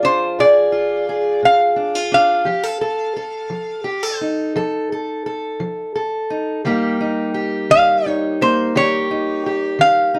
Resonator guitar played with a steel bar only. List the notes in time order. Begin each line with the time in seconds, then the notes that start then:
0.05 C5
0.40 D5
1.45 F5
2.14 F5
7.71 F5
8.06 C#5
8.42 C5
8.77 C#5
9.81 F5